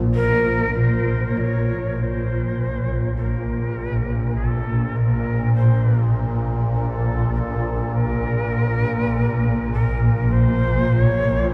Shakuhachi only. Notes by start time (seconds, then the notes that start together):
0.15 A#4
0.76 C5
1.37 C#5 D#5
1.98 C#5
2.03 C5
3.15 A#4
4.36 G#4
4.48 A4
4.96 A#4
5.55 C5
6.74 A4
6.82 A#4
6.90 A4
7.34 A#4
7.39 A4
7.94 A#4
9.73 A#4
10.32 C5
10.92 C#5